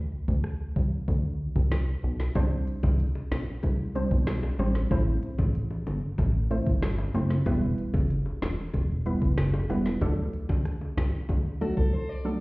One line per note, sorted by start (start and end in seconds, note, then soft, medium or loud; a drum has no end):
0.28 0.56 D2 medium
0.28 kick loud
0.44 cross-stick medium
0.76 0.90 C2 loud
0.76 kick medium
1.08 1.49 D2 loud
1.08 kick loud
1.56 1.97 C2 medium
1.56 kick medium
1.72 snare loud
2.04 2.31 B1 medium
2.20 snare medium
2.35 2.63 C2 loud
2.35 2.94 G3 medium
2.35 2.94 C4 medium
2.35 2.94 D4 medium
2.35 2.95 C5 loud
2.35 kick loud
2.35 closed hi-hat medium
2.35 high bongo medium
2.67 closed hi-hat soft
2.83 3.11 C2 medium
2.83 kick loud
2.83 high bongo medium
3.00 closed hi-hat medium
3.15 high bongo soft
3.31 3.45 B1 loud
3.31 snare loud
3.31 closed hi-hat medium
3.31 low bongo medium
3.63 4.04 C2 loud
3.63 kick medium
3.63 closed hi-hat medium
3.63 high bongo medium
3.95 4.13 G3 medium
3.95 4.13 C4 medium
3.95 4.13 D4 medium
3.95 4.13 C5 medium
3.95 closed hi-hat medium
4.11 4.52 B1 loud
4.11 kick medium
4.27 cross-stick loud
4.27 snare loud
4.27 closed hi-hat medium
4.43 high bongo medium
4.59 4.86 A1 medium
4.59 4.77 G3 medium
4.59 4.77 C4 medium
4.59 4.77 D4 medium
4.59 4.77 C5 medium
4.59 closed hi-hat soft
4.59 low bongo medium
4.75 snare medium
4.91 5.18 A1 loud
4.91 5.50 A3 medium
4.91 5.50 C4 medium
4.91 5.50 E4 medium
4.91 5.50 C5 loud
4.91 kick loud
4.91 closed hi-hat medium
4.91 high bongo medium
5.23 closed hi-hat soft
5.38 5.66 A1 medium
5.38 kick loud
5.38 high bongo medium
5.55 closed hi-hat medium
5.71 high bongo soft
5.87 6.00 G1 medium
5.87 closed hi-hat medium
5.87 low bongo medium
6.18 6.60 A1 loud
6.18 kick loud
6.18 closed hi-hat medium
6.18 high bongo medium
6.50 6.68 A3 medium
6.50 6.68 C4 medium
6.50 6.68 E4 medium
6.50 6.68 C5 medium
6.50 closed hi-hat medium
6.67 7.08 G1 medium
6.67 kick medium
6.83 cross-stick loud
6.83 snare loud
6.83 closed hi-hat medium
6.98 high bongo medium
7.14 7.42 F#1 medium
7.14 7.32 A3 medium
7.14 7.32 C4 medium
7.14 7.32 E4 medium
7.14 7.32 C5 medium
7.14 closed hi-hat soft
7.14 low bongo medium
7.30 snare medium
7.46 7.74 E1 loud
7.46 8.05 G3 medium
7.46 8.05 B3 medium
7.46 8.05 E4 medium
7.46 8.05 B4 loud
7.46 kick loud
7.46 closed hi-hat medium
7.46 high bongo medium
7.78 closed hi-hat soft
7.94 8.22 F#1 medium
7.94 kick loud
7.94 high bongo medium
8.10 closed hi-hat medium
8.26 high bongo soft
8.42 8.56 E1 loud
8.42 snare loud
8.42 closed hi-hat medium
8.42 low bongo medium
8.74 9.15 E1 loud
8.74 kick loud
8.74 closed hi-hat medium
8.74 high bongo medium
9.06 9.23 G3 medium
9.06 9.23 B3 medium
9.06 9.24 E4 medium
9.06 9.24 B4 medium
9.06 closed hi-hat medium
9.22 9.63 F#1 medium
9.22 kick medium
9.38 cross-stick loud
9.38 snare loud
9.38 closed hi-hat medium
9.54 high bongo medium
9.69 9.97 E1 loud
9.69 9.87 G3 medium
9.69 9.87 B3 medium
9.69 9.87 E4 medium
9.69 9.87 B4 medium
9.69 closed hi-hat medium
9.69 low bongo medium
9.86 snare medium
10.01 10.29 D2 loud
10.01 10.60 F#3 medium
10.01 10.60 A3 medium
10.01 10.60 D4 medium
10.01 10.61 A4 loud
10.01 kick loud
10.01 closed hi-hat medium
10.01 high bongo medium
10.33 closed hi-hat soft
10.49 10.77 D2 medium
10.49 kick loud
10.49 high bongo medium
10.65 cross-stick medium
10.65 closed hi-hat medium
10.81 high bongo soft
10.97 11.11 C2 loud
10.97 kick medium
10.97 snare loud
10.97 closed hi-hat medium
10.97 low bongo medium
11.29 11.70 D2 medium
11.29 kick loud
11.29 closed hi-hat medium
11.29 high bongo medium
11.61 11.79 F#3 medium
11.61 11.79 A3 medium
11.61 11.79 D4 medium
11.61 11.76 F#4 medium
11.61 11.79 A4 medium
11.61 closed hi-hat medium
11.77 11.91 C2 medium
11.77 11.92 A4 medium
11.77 kick medium
11.93 12.09 C5 medium
12.09 12.40 D5 medium
12.25 12.40 F#3 medium
12.25 12.40 A3 medium
12.25 12.40 D4 medium
12.25 12.40 A4 medium